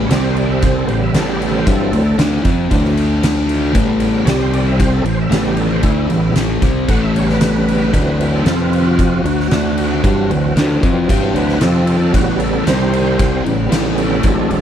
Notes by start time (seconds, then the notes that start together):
Already playing: E3 A3
0.07 C2 C3 C#5, crash
0.11 C3 G3 C4 D5, snare
0.24 C5
0.35 D5, crash
0.50 E5
0.62 C5, kick, crash
0.75 A4
0.87 A1 A2 C#3 G3 B3 C5, crash
0.91 E3
1.04 E5
1.14 A1 A2 E3 A3 A4, snare, crash
1.30 G4
1.42 A4, crash
1.56 C5
1.67 G2 E3 F#3 G3 C4 D4 G4 A4, kick, crash
1.92 D2 D3 A3, crash
2.18 D2 D3 A3 D4, snare, crash
2.44 F2 F3 C4 F4, kick, crash
2.71 D2 D3 E3 F#3 A3 C4 D4, kick, crash
2.85 snare
2.97 crash
3.23 snare, crash
3.49 crash
3.73 A1 A2 C#3 E3 G3 A3, kick, crash
3.78 B3
4.00 crash
4.25 C2 C3 G3 C4 C#5, snare, crash
4.29 C4 D5
4.42 C5
4.53 D5, crash
4.68 E5
4.80 C5, kick, crash
4.92 A4
5.03 A1 A2 E3, crash
5.08 C5
5.21 E5
5.29 A1 A2 E3 A3, snare, crash
5.34 C#3 G3 B3 A4
5.48 G4
5.57 A4, crash
5.72 C5
5.82 D2 D3 A3 D4 E4, kick, crash
6.08 A1 A2 C#3 E3 G3 B3, crash
6.32 A1 A2 E3, snare, crash
6.37 A3
6.62 C2 C3 G3 C4, kick, crash
6.88 A1 A2 E3 A3 F#5, kick, crash
7.03 E5
7.15 C#3 G3 B3 C#5, crash
7.27 A#4, snare
7.31 B4
7.41 snare, crash
7.68 crash
7.93 D2 D3 E3 A3 C4 D4, kick, crash
7.97 F#3
8.21 crash
8.36 A4
8.45 F2 C3 F3 C4 F4, snare, crash
8.60 B4
8.73 crash
8.85 F#4
8.99 kick, crash
9.24 D2 D3 A3 F#4, crash
9.40 snare
9.51 D2 D3 A3 D4, snare, crash
9.78 crash
10.03 G2 E3 F#3 G3 C4 D4 G4, kick, crash
10.30 D2 D3 A3, crash
10.56 D2 D3 A3 D4, snare, crash
10.83 F2 F3 C4 F4, kick, crash
11.09 G2 G3 D4 G4, kick, crash
11.34 D2 D3 A3 D4 B4, crash
11.49 snare
11.60 F2 C3 F3 C4 F4 A4, snare, crash
11.87 crash
12.12 A1 A2 C#3 E3 G3 A3 B3 F#4, kick, crash
12.39 A4, crash
12.53 A4
12.67 C2 C3 G3 C4 C5, snare, crash
12.93 crash
13.19 kick, crash
13.44 A1 A2 C#3 E3 G3 B3, crash
13.69 A1 A2 E3 A3, snare, crash
13.94 G#4
13.98 C#4 A4, crash
14.22 A1 A2 E3 F#3 G#3 A3, kick, crash
14.26 C4 D4 A4
14.50 E1 E2 B2 C4 A4, crash